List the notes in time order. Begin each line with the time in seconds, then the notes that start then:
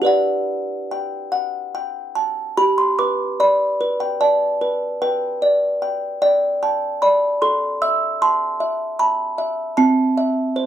0.02 G4 B4 D5
0.06 F#5
0.91 G5
1.32 F#5
1.75 G5
2.15 A5
2.57 G4 B5
2.78 C6
2.99 B4 D6
3.40 D5 B5
3.81 B4
4.00 G5
4.21 D5 A5
4.61 B4
5.02 B4 G5
5.42 D5
5.82 G5
6.22 D5 G5
6.63 G5 A5
7.02 D5 B5
7.42 A4 C6
7.82 E5 E6
8.22 A5 C6
8.60 E5
8.99 A5 B5
9.38 E5
9.77 C4 A5
10.18 E5
10.56 C5